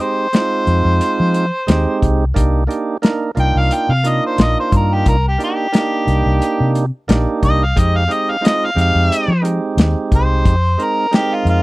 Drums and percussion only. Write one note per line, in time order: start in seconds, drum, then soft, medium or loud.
0.00 closed hi-hat medium
0.33 snare loud
0.33 closed hi-hat medium
0.67 closed hi-hat medium
1.01 closed hi-hat medium
1.34 closed hi-hat medium
1.68 snare loud
1.68 closed hi-hat medium
2.02 kick medium
2.02 closed hi-hat medium
2.36 kick medium
2.36 closed hi-hat medium
2.71 closed hi-hat medium
3.03 snare loud
3.03 closed hi-hat medium
3.37 closed hi-hat medium
3.71 closed hi-hat medium
4.04 closed hi-hat medium
4.38 snare loud
4.38 closed hi-hat medium
4.72 kick medium
4.72 closed hi-hat medium
5.06 kick loud
5.06 closed hi-hat medium
5.40 closed hi-hat medium
5.73 snare loud
5.73 closed hi-hat medium
6.08 closed hi-hat medium
6.42 closed hi-hat medium
6.75 closed hi-hat medium
7.09 snare loud
7.09 closed hi-hat medium
7.43 kick medium
7.43 closed hi-hat medium
7.77 kick loud
7.77 closed hi-hat medium
8.11 closed hi-hat medium
8.45 snare medium
8.45 closed hi-hat medium
8.78 closed hi-hat medium
9.12 closed hi-hat medium
9.45 closed hi-hat medium
9.78 snare loud
9.78 closed hi-hat medium
10.12 kick medium
10.12 closed hi-hat medium
10.45 kick loud
10.45 closed hi-hat medium
10.80 closed hi-hat medium
11.13 snare loud
11.13 closed hi-hat medium
11.47 closed hi-hat medium